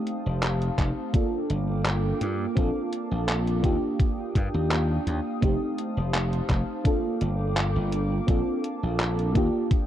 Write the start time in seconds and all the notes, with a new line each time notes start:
Already playing: A3 C4 D#4 G4 C5 F5 A5 D#6
0.07 closed hi-hat
0.26 F1
0.43 clap, closed hi-hat
0.62 closed hi-hat
0.78 F1, kick, clap, closed hi-hat
1.13 A#3 D4 F4 A4 F5 G5 D6, kick, closed hi-hat
1.50 G1, closed hi-hat
1.85 clap, closed hi-hat
2.21 G2, closed hi-hat
2.55 A#1 C4 D4 F4 A4 A5, kick, closed hi-hat
2.93 closed hi-hat
3.11 A#1
3.28 clap, closed hi-hat
3.47 closed hi-hat
3.62 D#2 A#3 D4 F4 G4 F5 G5 D#6, kick, closed hi-hat
4.00 kick, closed hi-hat
4.35 G2, kick, closed hi-hat
4.54 D#2
4.71 clap, closed hi-hat
5.07 D#2, closed hi-hat
5.41 F1 A3 C4 D#4 G4 C5 A5, kick, closed hi-hat
5.78 closed hi-hat
5.97 F1
6.14 clap, closed hi-hat
6.33 closed hi-hat
6.50 F1, kick, clap, closed hi-hat
6.84 A#3 D4 F4 A4 G5 D6, kick, closed hi-hat
7.21 G1, closed hi-hat
7.57 clap, closed hi-hat
7.76 G1
7.93 closed hi-hat
8.27 A#1 C4 D4 F4 A4 A5, kick, closed hi-hat
8.64 closed hi-hat
8.83 A#1
9.00 clap, closed hi-hat
9.19 closed hi-hat
9.34 D#2 A#3 D4 F4 G4 G5 D#6, kick, closed hi-hat
9.71 kick, closed hi-hat